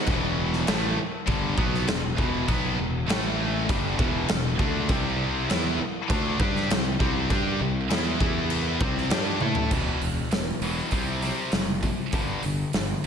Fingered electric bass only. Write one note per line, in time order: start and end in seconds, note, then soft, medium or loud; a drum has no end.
0.08 0.64 E1 medium
0.68 0.96 A1 loud
0.99 muted fingered electric bass stroke soft
1.27 1.55 G1 medium
1.58 1.86 B1 loud
1.88 2.16 E1 medium
2.18 2.46 E1 medium
2.49 2.76 B1 loud
2.79 3.07 E1 medium
3.10 3.65 A1 medium
3.69 3.97 G1 medium
3.99 4.27 E1 medium
4.30 4.57 E1 medium
4.59 4.87 D2 loud
4.89 5.45 C2 medium
5.51 5.78 E2 medium
5.80 muted fingered electric bass stroke soft
6.10 6.38 D2 medium
6.40 6.68 G2 loud
6.71 6.98 C2 medium
7.00 7.28 C2 loud
7.30 7.58 G2 loud
7.61 7.88 C2 medium
7.91 8.19 E2 loud
8.21 8.77 E2 loud
8.81 9.09 C2 medium
9.12 9.39 G2 medium
9.42 9.70 A2 loud
9.72 9.91 E1 medium
10.02 10.21 E1 medium
10.32 10.51 E1 medium
10.61 10.81 E1 medium
10.92 11.30 C2 medium
11.53 11.91 F#1 medium
12.13 12.32 G1 medium
12.44 12.63 G1 medium
12.74 12.93 G1 medium